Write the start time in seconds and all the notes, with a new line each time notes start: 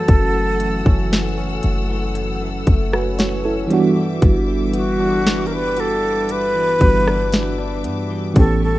Already playing: E3 F#3 A3 C#4 F#4 A4 F#5 E6
0.08 F#1 F#2, kick, closed hi-hat
0.34 E3
0.60 A3, closed hi-hat
0.85 F#1 C#4, kick
1.11 E3, snare, closed hi-hat
1.38 C#4
1.63 F#1 A3, closed hi-hat
1.89 E3
2.15 F#2, closed hi-hat
2.41 E3
2.66 F#1 A3, kick, closed hi-hat
2.92 C#4 F#4 B4, cross-stick
3.18 E3 F#4 C#5, snare, closed hi-hat
3.44 C#4 E4 A4
3.68 G2 E3 G3 B3 E5 D6, closed hi-hat
3.72 D4 F#4
3.96 E3
4.22 G1 G2, kick, closed hi-hat
4.48 E3
4.73 B3 F#4, closed hi-hat
4.99 D4
5.25 E3, snare, closed hi-hat
5.47 A#4
5.51 D4 B4
5.77 B3 A4, closed hi-hat
6.03 E3
6.29 G2 B4, closed hi-hat
6.55 E3
6.79 G1 E3 G3 B3 D4 F#4, kick, closed hi-hat
7.07 D4, cross-stick
7.32 E3, snare, closed hi-hat
7.58 D4
7.84 G2 B3, closed hi-hat
8.10 E3
8.34 A1 A2 E3 A3 B3 C#4 A4 G5 C#6, kick, closed hi-hat
8.38 G4 A4
8.62 G3 A4